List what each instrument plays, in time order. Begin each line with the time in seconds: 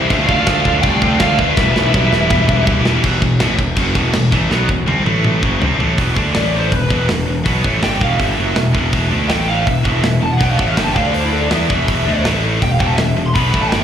Already playing: distorted electric guitar C3
0.01 distorted electric guitar C3 E3 C4 E4
0.09 picked electric bass D2, distorted electric guitar D3 A3 D4 F4, kick, crash
0.17 distorted electric guitar D3 A3 D4 F4
0.24 distorted electric guitar D3 A3 D4 F4, lead electric guitar D5
0.28 picked electric bass D2, distorted electric guitar D4, lead electric guitar F5, kick
0.33 distorted electric guitar D3 A3 F4
0.40 distorted electric guitar D3 A3 D4 F4
0.47 picked electric bass D2, distorted electric guitar D3 A3 D4 F4, kick, snare, crash
0.55 distorted electric guitar D3 A3 D4 F4
0.63 picked electric bass D2, distorted electric guitar D3 A3 D4 F4, kick
0.71 distorted electric guitar D3 A3 D4 F4
0.78 distorted electric guitar D3 A3 D4 F4, lead electric guitar D5 G5
0.83 picked electric bass C2, distorted electric guitar D3 D4, kick, crash
0.87 distorted electric guitar A3 F4
0.93 distorted electric guitar D3 A3 D4 F4
1.02 picked electric bass D2, distorted electric guitar D3 A3 D4 F4, kick
1.09 distorted electric guitar D3 A3 D4 F4
1.17 picked electric bass D2, distorted electric guitar D3 A3 D4 F4, lead electric guitar D5 F5, kick, snare, crash
1.25 distorted electric guitar D3 A3 D4 F4
1.33 distorted electric guitar D3 A3 D4 F4
1.38 distorted electric guitar D3 A3 D4 F4, lead electric guitar B4 E5, kick
1.48 distorted electric guitar D3 A3 D4 F4
1.56 picked electric bass E1, distorted electric guitar E3 G3 B3 E4, kick, snare
1.64 distorted electric guitar E3 G3 B3 E4
1.70 distorted electric guitar E3 G3 B3 E4
1.76 picked electric bass B1, distorted electric guitar E3 B3 E4, snare
1.81 distorted electric guitar G3
1.87 distorted electric guitar E3 G3 B3 E4
1.94 picked electric bass B1, distorted electric guitar E3 G3 B3 E4, kick
2.02 distorted electric guitar E3 G3 B3 E4
2.10 picked electric bass E1, distorted electric guitar E3 G3 B3 E4, snare
2.18 distorted electric guitar E3 G3 B3 E4
2.26 distorted electric guitar E3 G3 B3 E4
2.30 picked electric bass E1, distorted electric guitar E3 B3 E4, kick, mid tom
2.35 distorted electric guitar G3
2.41 distorted electric guitar E3 G3 B3 E4
2.49 picked electric bass E1, distorted electric guitar E3 G3 B3 E4, kick
2.56 distorted electric guitar E3 G3 B3 E4
2.64 picked electric bass E1, distorted electric guitar E3 G3 B3 E4, kick, floor tom
2.72 distorted electric guitar E3 G3 B3 E4
2.79 distorted electric guitar E3 G3 B3 E4
2.85 distorted electric guitar E3 G3 B3 E4, snare
2.95 distorted electric guitar E3 G3 B3 E4
3.04 picked electric bass E1, distorted electric guitar E2 B2 E3, kick, crash
3.22 picked electric bass E1, distorted electric guitar E2 B2, kick, crash
3.40 picked electric bass A1, distorted electric guitar A2 E3 A3, snare, crash
3.58 picked electric bass E1, distorted electric guitar E2 B2, kick, crash
3.76 picked electric bass F#1, distorted electric guitar F#2 C#3 F#3, kick, crash
3.95 picked electric bass E1, distorted electric guitar E2 B2 E3, kick, crash
4.13 picked electric bass E1, distorted electric guitar E2 B2, snare, crash
4.31 picked electric bass A1, distorted electric guitar A2 E3 A3, kick, crash
4.49 picked electric bass B1, distorted electric guitar B2 F#3 B3, snare
4.68 picked electric bass E1, distorted electric guitar E2 B2, kick
4.87 picked electric bass C2, distorted electric guitar C3 G3 C4, high tom
5.05 picked electric bass A1, distorted electric guitar A2 E3 A3, high tom
5.24 mid tom
5.42 picked electric bass F#1, distorted electric guitar F#2 C#3 F#3, kick
5.61 picked electric bass C2, distorted electric guitar C3 G3 C4, floor tom
5.79 picked electric bass A1, distorted electric guitar A2 E3 A3, floor tom
5.96 picked electric bass E1, distorted electric guitar E2 B2 E3, kick, open hi-hat
6.15 picked electric bass D2, distorted electric guitar D3 A3 D4, kick
6.34 picked electric bass A1, distorted electric guitar A2 E3 A3, lead electric guitar D5, snare, open hi-hat
6.56 lead electric guitar C5
6.71 picked electric bass E1, distorted electric guitar E2 B2, lead electric guitar B4, kick, open hi-hat
6.90 picked electric bass E1, distorted electric guitar E2 B2 E3, kick
7.09 picked electric bass E1, distorted electric guitar E2 B2, snare, open hi-hat
7.28 picked electric bass E1, distorted electric guitar E2 B2
7.45 picked electric bass B1, distorted electric guitar B2 F#3 B3, kick, open hi-hat
7.63 picked electric bass A1, distorted electric guitar A2 E3 A3, kick
7.82 picked electric bass G1, distorted electric guitar G2 D3 G3, lead electric guitar G5, snare, open hi-hat
8.01 picked electric bass E1, distorted electric guitar E2 B2 E3, lead electric guitar F5, kick
8.18 picked electric bass G1, distorted electric guitar G2 D3 G3, lead electric guitar E5, kick, open hi-hat
8.37 picked electric bass F#1, distorted electric guitar F#2 C#3 F#3
8.56 picked electric bass E1, distorted electric guitar E2 B2, snare, open hi-hat
8.73 picked electric bass E1, distorted electric guitar E2 B2 E3, kick
8.91 picked electric bass E1, distorted electric guitar E2 B2 E3, kick, open hi-hat
9.10 picked electric bass D2, distorted electric guitar D3 A3 D4
9.28 picked electric bass A1, distorted electric guitar A2 E3 A3, lead electric guitar G5, snare, open hi-hat
9.48 lead electric guitar F5
9.65 picked electric bass E1, distorted electric guitar E2 B2, lead electric guitar E5, kick, open hi-hat
9.83 picked electric bass E1, distorted electric guitar E2 B2 E3, kick
10.02 picked electric bass E1, distorted electric guitar E2 B2, snare, open hi-hat
10.21 picked electric bass E1, distorted electric guitar E2 B2, lead electric guitar A5
10.31 lead electric guitar F#5
10.39 picked electric bass B1, distorted electric guitar B2 F#3 B3, lead electric guitar G5, kick, open hi-hat
10.50 lead electric guitar F5
10.57 picked electric bass A1, distorted electric guitar A2 E3 A3, lead electric guitar E5, kick
10.68 lead electric guitar F5
10.76 picked electric bass G1, distorted electric guitar G2 D3 G3, lead electric guitar G5, snare, open hi-hat
10.84 lead electric guitar A5
10.91 distorted electric guitar D3 A3, lead electric guitar G5
10.95 picked electric bass D2, distorted electric guitar D4, lead electric guitar F5, kick
11.06 lead electric guitar D5
11.14 lead electric guitar C5, open hi-hat
11.23 lead electric guitar E4
11.33 lead electric guitar A4
11.41 lead electric guitar D5
11.51 picked electric bass E2, distorted electric guitar E3 B3 E4, lead electric guitar E5, snare, open hi-hat
11.70 picked electric bass E1, distorted electric guitar E2 B2 E3, kick
11.88 picked electric bass E1, distorted electric guitar E2 B2 E3, kick, open hi-hat
12.06 picked electric bass D2, distorted electric guitar D3 A3 D4
12.23 picked electric bass A1, distorted electric guitar A2 E3 A3, snare, open hi-hat
12.61 picked electric bass E1, distorted electric guitar E2 B2, lead electric guitar G5, kick, open hi-hat
12.71 lead electric guitar F5
12.79 picked electric bass E1, distorted electric guitar E2 B2 E3, lead electric guitar G5, kick
12.86 lead electric guitar A5
12.92 lead electric guitar E5 F5
12.98 picked electric bass E1, distorted electric guitar E2 B2, snare, open hi-hat
13.17 picked electric bass E1, distorted electric guitar E2 B2
13.26 lead electric guitar C6
13.34 picked electric bass B1, distorted electric guitar B2 F#3 B3, lead electric guitar B5, kick, open hi-hat
13.53 picked electric bass A1, distorted electric guitar A2 E3 A3, kick
13.62 lead electric guitar A5
13.69 picked electric bass G1, distorted electric guitar G2 D3 G3, lead electric guitar G5, snare, open hi-hat
13.79 lead electric guitar E5